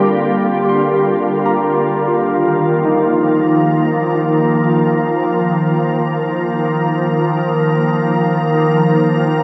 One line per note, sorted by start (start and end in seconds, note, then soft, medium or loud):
0.00 2.23 D3 medium
0.00 2.23 G3 medium
0.00 9.43 A#3 medium
0.00 1.81 D4 medium
0.00 9.43 F4 medium
0.00 2.23 G4 medium
0.69 1.66 C6 medium
1.46 5.47 A#5 medium
2.08 3.05 F4 soft
2.23 9.43 D#3 medium
2.53 9.43 F3 medium
2.85 6.83 D#4 medium
3.07 9.43 A#5 medium